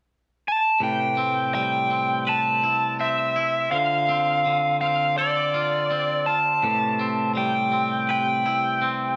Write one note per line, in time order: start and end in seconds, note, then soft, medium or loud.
0.48 0.80 A5 soft
0.80 2.63 A2 soft
0.80 3.69 C3 soft
0.80 6.59 A3 soft
0.80 3.69 G4 soft
0.80 3.69 B4 soft
0.80 1.53 G5 soft
1.17 1.90 C4 soft
1.55 3.36 G3 soft
1.55 2.23 G5 soft
1.91 2.99 C4 soft
2.27 3.72 B4 soft
2.27 2.96 A5 soft
2.63 3.35 E4 soft
3.00 3.75 C4 soft
3.00 3.71 E5 soft
3.36 3.72 E4 soft
3.71 6.59 D3 soft
3.71 4.44 D3 soft
3.71 6.59 F4 soft
3.71 6.60 C5 soft
3.71 4.77 F5 soft
4.09 4.81 C4 soft
4.46 6.27 D3 soft
4.81 5.90 C4 soft
4.81 5.17 F5 soft
5.18 7.38 A4 soft
5.18 6.30 D5 soft
5.54 6.26 F4 soft
5.91 6.99 C4 soft
6.26 6.63 F4 soft
6.26 7.31 A5 medium
6.63 8.45 A2 soft
6.63 9.16 C3 soft
6.63 9.16 A3 soft
6.63 9.16 G4 soft
6.63 9.16 B4 soft
6.99 7.71 C4 soft
7.35 9.16 G3 soft
7.35 8.09 G5 soft
7.72 8.81 C4 soft
8.09 9.16 B4 soft
8.09 9.16 G5 soft
8.46 9.16 E4 soft
8.82 9.16 C4 soft